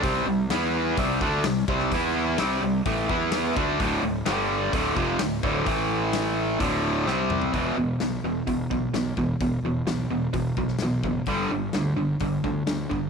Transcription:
<<
  \new Staff \with { instrumentName = "Overdriven electric guitar" } { \clef bass \time 4/4 \key c \lydian \tempo 4 = 128 <c g c'>8 <c g>8 <e b e'>4 <c g c'>8 <d a d'>8 <c g>8 <c g c'>8 | <e b e'>4 <c g c'>8 <c g>8 <a, e a>8 <e b e'>4 <d a d'>8 | <d, a, d>8 <d, a,>8 <g, d g>4 <d, a, d>8 <f, c f>8 <d, a,>8 <d, a, d>8 | <a, e a>2 <d, a, d>4 <c g c'>4 |
\key e \dorian <e, b, e>8 <e, b,>8 <e, b,>8 <e, b,>8 <e, b,>8 <e, b,>8 <e, b,>8 <e, b,>8 | <e, b,>8 <e, b,>8 <e, b,>8 <e, b,>8 <e, b,>8 <e, b,>8 <e, b,>8 <e, b,>8 | <g, d g>8 <g, d>8 <g, d>8 <g, d>8 <g, d>8 <g, d>8 <g, d>8 <g, d>8 | }
  \new Staff \with { instrumentName = "Fingered electric bass" } { \clef bass \time 4/4 \key c \lydian c,8 c,8 e,4 c,8 d,8 c,8 c,8 | e,4 c,8 c,8 a,,8 e,4 d,8 | d,,8 d,,8 g,,4 d,,8 f,,8 d,,8 d,,8 | a,,2 d,,4 c,4 |
\key e \dorian e,,8 e,,8 b,,8 e,,8 e,,8 b,,8 b,,8 e,,8 | e,,8 e,,8 b,,8 e,,8 e,,8 b,,8 b,,8 fis,,8 | g,,8 g,,8 d,8 g,,8 g,,8 d,8 d,8 g,,8 | }
  \new DrumStaff \with { instrumentName = "Drums" } \drummode { \time 4/4 <hho bd>4 <hho sn>4 <hho bd>8 bd8 <hho sn>8 bd16 sn16 | <hho bd>4 <hho sn>4 <hho bd>8 bd8 <hho sn>8 bd8 | <hho bd>4 <hho sn>4 <hho bd>8 bd8 <hho sn>8 bd8 | <hho bd>4 <hho sn>4 <hho bd>4 sn8 toml16 tomfh16 |
<hho bd>4 <hho sn>4 <hho bd>8 bd8 <hho sn>8 bd8 | <hho bd>4 <hho sn>4 <hho bd>8 bd16 sn16 <hho sn>8 bd8 | <hho bd>4 <hho sn>4 <hho bd>8 bd8 <hho sn>8 bd8 | }
>>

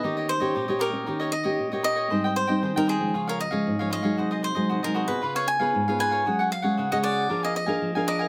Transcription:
<<
  \new Staff \with { instrumentName = "Cavaquinho" } { \time 4/4 \key aes \major \tempo 4 = 116 dis''8 c''4 bes'4 ees''4 ees''8~ | ees''8 c''8. bes'16 aes'8. bes'16 ees''4 ees''8~ | ees''8 c''8. bes'8 ces''8 des''16 aes''4 aes''8~ | aes''8 f''8. ees''16 d''8. ees''16 ees''4 ees''8 | }
  \new Staff \with { instrumentName = "Cavaquinho" } { \time 4/4 \key aes \major <ees' g' des'' ees''>16 <g' des'' ees''>16 r16 <g' des'' ees''>16 <ees' g' des'' ees''>16 <g' des'' ees''>16 <ees' g' des'' ees''>8 <ees' g' des'' ees''>16 <g' des'' ees''>16 r16 <g' des'' ees''>8 <g' des'' ees''>16 <ees' g' des'' ees''>16 <g' des'' ees''>16 | <aes' c'' ees'' g''>16 <c'' ees'' g''>16 r16 <c'' ees'' g''>16 <aes' c'' ees'' g''>16 <c'' ees'' g''>16 <aes' c'' ees'' g''>8 <f' aes' des'' f''>16 <aes' des'' f''>16 r16 <aes' des'' f''>8 <aes' des'' f''>16 <f' aes' des'' f''>16 <aes' des'' f''>16 | <ges' aes' c'' ees''>16 <aes' c'' ees''>16 r16 <aes' c'' ees''>16 <ges' aes' c'' ees''>16 <aes' c'' ees''>16 <ges' aes' c'' ees''>8 <f' ces'' des'' f''>16 <ces'' des'' f''>16 r16 <ces'' des'' f''>8 <ces'' des'' f''>16 <f' ces'' des'' f''>16 <ces'' des'' f''>16 | <ges' aes' des'' ges''>16 <aes' des'' ges''>16 r16 <aes' des'' ges''>16 <ges' aes' des'' ges''>16 <aes' des'' ges''>16 <ges' aes' des'' ges''>8 <d' bes' f'' aes''>16 <bes' f'' aes''>16 r16 <bes' f'' aes''>8 <bes' f'' aes''>16 <d' bes' f'' aes''>16 <bes' f'' aes''>16 | }
  \new Staff \with { instrumentName = "Nylon-string guitar" } { \time 4/4 \key aes \major << { <bes des' g'>8. <bes des' g'>8 <bes des' g'>8 <bes des' g'>16 <bes des' g'>8 r16 <bes des' g'>8 <bes des' g'>8. | <g c' ees'>8. <g c' ees'>8 <g c' ees'>8 <f aes des'>4 <f aes des'>8 <f aes des'>8 <ges aes ees'>16~ | <ges aes ees'>8. <ges aes ees'>8 <ges aes ees'>8 <ces' f' aes'>4 <ces' f' aes'>8 <ces' f' aes'>8. | <aes des' aes'>8 r16 <aes des' aes'>8 <aes des' aes'>8. <bes d' aes'>8. <bes d' aes'>8 <bes d' aes'>8. | } \\ { ees4 bes,4 ees4 bes,4 | aes,4 ees4 des4 aes,4 | c4 c4 des4 aes,4 | ges4 des4 f4 f4 | } >> }
>>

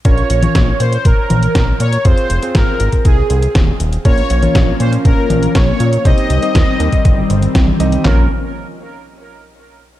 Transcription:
<<
  \new Staff \with { instrumentName = "Analog polysynth" } { \time 4/4 \key bes \dorian \tempo 4 = 120 des''4. c''8 bes'4. des''8 | c''4 bes'4 aes'4. r8 | des''4. c''8 bes'4 des''4 | ees''2.~ ees''8 r8 |
bes'8 r2. r8 | }
  \new Staff \with { instrumentName = "Electric grand piano" } { \time 4/4 \key bes \dorian <des' f' bes' des''>8. <des' f' bes' des''>2.~ <des' f' bes' des''>16 | <c' f' aes' c''>8. <c' f' aes' c''>2.~ <c' f' aes' c''>16 | <des' f' bes' des''>8. <des' f' bes' des''>2.~ <des' f' bes' des''>16 | <c' ees' g' c''>8. <c' ees' g' c''>2~ <c' ees' g' c''>8. <c' ees' g' ees''>8 |
<des' f' bes' des''>8 r2. r8 | }
  \new Staff \with { instrumentName = "Analog synth pad" } { \time 4/4 \key bes \dorian r1 | r1 | <f bes des'>1 | <ees g c'>1 |
<f bes des'>8 r2. r8 | }
  \new Staff \with { instrumentName = "Analog synth bass" } { \clef bass \time 4/4 \key bes \dorian bes,,8 bes,,8 bes,,8 bes,8 bes,,8 bes,,8 bes,,8 bes,8 | f,,8 f,,8 aes,,8 aes,,8 c,8 c,8 ees,,8 ees,,8 | bes,,8 bes,,8 bes,,8 bes,8 bes,,8 bes,,8 bes,,8 bes,8 | c,8 c,8 ees,8 ees,8 g,,8 g,,8 c,8 c,8 |
bes,,8 r2. r8 | }
  \new DrumStaff \with { instrumentName = "Drums" } \drummode { \time 4/4 <hh bd>16 hh16 hh16 <cgho hh>16 <hh bd sn>8 hh16 hh16 <hh bd>8 <cgho hh>16 hh16 <hh bd sn>8 hh16 hh16 | <hh bd>16 hh16 hh16 hh16 <hh bd sn>8 hh16 <hh bd>16 <hh bd>8 hh16 hh16 <hh bd sn>8 hh16 hh16 | <hh bd>16 hh16 hh16 <cgho hh>16 <hh bd sn>8 hh16 hh16 <hh bd>8 <cgho hh>16 hh16 <hh bd sn>8 hh16 hh16 | <hh bd>16 hh16 hh16 hh16 <hh bd sn>8 hh16 <hh bd>16 <hh bd>8 hh16 hh16 <hh bd sn>16 cgho16 hh16 hh16 |
<hc sn tomfh>4 r4 r4 r4 | }
>>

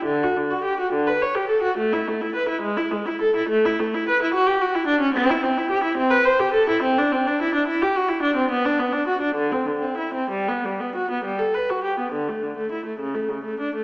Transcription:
\new Staff \with { instrumentName = "Viola" } { \time 6/8 \key a \mixolydian \tempo 4. = 70 d16 fis'16 d16 fis'16 g'16 fis'16 d16 b'16 cis''16 g'16 a'16 fis'16 | a16 e'16 a16 e'16 b'16 e'16 gis16 e'16 gis16 e'16 a'16 e'16 | a16 e'16 a16 e'16 b'16 e'16 fis'16 g'16 fis'16 e'16 d'16 cis'16 | \key g \major c'16 e'16 c'16 e'16 g'16 e'16 c'16 b'16 c''16 g'16 a'16 e'16 |
c'16 d'16 c'16 d'16 e'16 d'16 e'16 g'16 fis'16 e'16 d'16 c'16 | b16 d'16 b16 d'16 fis'16 d'16 d16 c'16 d16 c'16 e'16 c'16 | g16 b16 g16 b16 fis'16 b16 g16 a'16 b'16 fis'16 g'16 b16 | \key a \mixolydian d16 a16 d16 a16 e'16 a16 cis16 a16 cis16 a16 d'16 a16 | }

